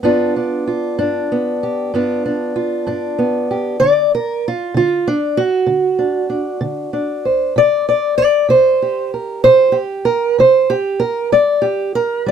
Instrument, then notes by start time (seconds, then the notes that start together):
steel-string acoustic guitar
0.03 G2 B3 D4 F4
0.36 D4
0.67 F4
0.98 G2 D4
1.32 B3
1.63 G4
1.94 G2 B3 D4 F4
2.26 D4
2.56 F4
2.87 G2 D4
3.18 B3
3.51 G4
3.80 D3 D5
4.15 A#4
4.48 F4
4.74 D3 F4
5.08 D4
5.37 F#4
5.67 D3
5.99 D4
6.30 D4
6.61 D3
6.93 D4
7.25 C5
7.56 C3 D5
7.89 D5
8.18 D5
8.49 C3 C5
8.82 G4
9.14 A#4
9.44 C3 C5
9.72 G4
10.05 A#4
10.38 C3 C5
10.70 G4
11.00 A#4
11.32 G3 D5
11.62 G4
11.95 A#4
12.26 G3 D5